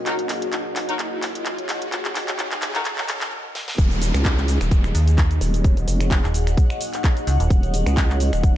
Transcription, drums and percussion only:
0.06 clap medium
0.06 closed hi-hat medium
0.19 closed hi-hat soft
0.29 clap medium
0.29 open hi-hat loud
0.42 closed hi-hat medium
0.53 clap medium
0.53 closed hi-hat medium
0.76 clap medium
0.76 open hi-hat loud
0.89 closed hi-hat soft
0.99 clap medium
0.99 closed hi-hat medium
1.23 clap medium
1.23 open hi-hat loud
1.35 closed hi-hat medium
1.46 clap medium
1.46 closed hi-hat medium
1.58 closed hi-hat soft
1.69 clap medium
1.69 open hi-hat medium
1.82 closed hi-hat soft
1.92 clap medium
1.92 closed hi-hat medium
2.05 clap medium
2.05 closed hi-hat soft
2.15 clap medium
2.15 open hi-hat loud
2.28 clap medium
2.28 closed hi-hat medium
2.39 clap medium
2.39 closed hi-hat medium
2.52 clap medium
2.52 closed hi-hat soft
2.62 clap loud
2.62 open hi-hat medium
2.75 clap medium
2.75 closed hi-hat soft
2.85 clap loud
2.85 closed hi-hat medium
2.98 clap medium
3.09 clap loud
3.09 open hi-hat loud
3.21 clap medium
3.21 closed hi-hat soft
3.55 snare medium
3.68 snare medium
3.78 kick loud
3.78 closed hi-hat medium
3.78 cabasa soft
3.91 closed hi-hat soft
3.91 cabasa soft
4.02 open hi-hat loud
4.02 cabasa medium
4.14 finger snap medium
4.14 closed hi-hat medium
4.14 cabasa soft
4.25 kick loud
4.25 clap loud
4.25 closed hi-hat medium
4.25 cabasa soft
4.38 clap soft
4.38 cabasa soft
4.48 open hi-hat medium
4.48 cabasa medium
4.61 finger snap medium
4.61 closed hi-hat medium
4.61 cabasa soft
4.71 kick loud
4.71 closed hi-hat medium
4.71 cabasa soft
4.84 finger snap medium
4.84 cabasa soft
4.95 open hi-hat loud
4.95 cabasa medium
5.08 closed hi-hat medium
5.08 cabasa soft
5.18 kick loud
5.18 clap loud
5.18 closed hi-hat medium
5.18 cabasa soft
5.31 closed hi-hat soft
5.31 cabasa soft
5.41 open hi-hat medium
5.41 cabasa medium
5.54 closed hi-hat medium
5.54 cabasa soft
5.64 kick loud
5.64 closed hi-hat medium
5.64 cabasa soft
5.77 closed hi-hat soft
5.77 cabasa soft
5.88 open hi-hat loud
5.88 cabasa medium
6.01 finger snap medium
6.01 closed hi-hat medium
6.01 cabasa soft
6.11 kick loud
6.11 clap loud
6.11 closed hi-hat medium
6.11 cabasa soft
6.24 clap soft
6.24 cabasa soft
6.34 open hi-hat loud
6.34 cabasa medium
6.47 finger snap medium
6.47 closed hi-hat medium
6.47 cabasa soft
6.57 kick loud
6.57 closed hi-hat medium
6.57 cabasa soft
6.70 finger snap medium
6.70 cabasa soft
6.81 open hi-hat loud
6.81 cabasa medium
6.94 clap soft
6.94 closed hi-hat medium
6.94 cabasa soft
7.04 kick loud
7.04 clap loud
7.04 closed hi-hat medium
7.04 cabasa soft
7.17 closed hi-hat soft
7.17 cabasa soft
7.27 open hi-hat medium
7.27 cabasa medium
7.40 closed hi-hat medium
7.40 cabasa soft
7.50 kick loud
7.50 closed hi-hat medium
7.50 cabasa soft
7.63 closed hi-hat soft
7.63 cabasa soft
7.74 open hi-hat loud
7.74 cabasa medium
7.86 finger snap medium
7.86 closed hi-hat medium
7.86 cabasa soft
7.97 kick loud
7.97 clap loud
7.97 closed hi-hat medium
7.97 cabasa soft
8.10 clap soft
8.10 cabasa soft
8.20 open hi-hat loud
8.20 cabasa medium
8.33 finger snap medium
8.33 closed hi-hat medium
8.33 cabasa soft
8.43 kick loud
8.43 closed hi-hat medium
8.43 cabasa soft

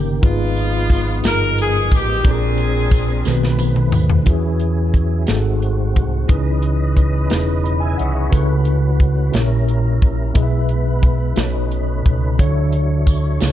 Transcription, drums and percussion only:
0.23 kick loud
0.23 closed hi-hat medium
0.56 closed hi-hat medium
0.90 kick medium
0.90 closed hi-hat soft
0.90 tambourine soft
1.24 snare medium
1.24 closed hi-hat medium
1.24 tambourine medium
1.58 closed hi-hat soft
1.58 tambourine soft
1.92 kick medium
1.92 closed hi-hat soft
1.92 tambourine soft
2.25 kick loud
2.25 closed hi-hat medium
2.58 closed hi-hat medium
2.91 kick medium
2.91 closed hi-hat soft
2.91 tambourine soft
3.25 snare soft
3.25 tambourine medium
3.43 snare soft
3.59 high tom medium
3.59 tambourine soft
3.76 mid tom medium
3.92 mid tom medium
3.92 tambourine soft
4.10 floor tom medium
4.26 kick loud
4.26 closed hi-hat medium
4.60 closed hi-hat soft
4.94 kick medium
4.94 closed hi-hat soft
5.27 snare medium
5.27 closed hi-hat medium
5.62 closed hi-hat soft
5.96 kick medium
5.96 closed hi-hat soft
6.29 kick loud
6.29 closed hi-hat medium
6.62 closed hi-hat medium
6.97 kick medium
6.97 closed hi-hat soft
7.30 snare medium
7.30 closed hi-hat medium
7.66 closed hi-hat soft
7.99 closed hi-hat soft
8.33 kick medium
8.33 closed hi-hat medium
8.65 closed hi-hat soft
9.00 kick medium
9.00 closed hi-hat soft
9.34 snare medium
9.34 closed hi-hat medium
9.68 closed hi-hat soft
10.02 kick medium
10.02 closed hi-hat soft
10.35 kick loud
10.35 closed hi-hat medium
10.69 closed hi-hat medium
11.03 kick medium
11.03 closed hi-hat soft
11.36 snare medium
11.36 closed hi-hat medium
11.71 closed hi-hat soft
12.06 kick medium
12.06 closed hi-hat soft
12.39 kick loud
12.39 closed hi-hat medium
12.72 closed hi-hat soft
13.07 kick medium
13.07 closed hi-hat soft
13.07 tambourine soft
13.41 snare medium
13.41 closed hi-hat medium
13.41 tambourine medium

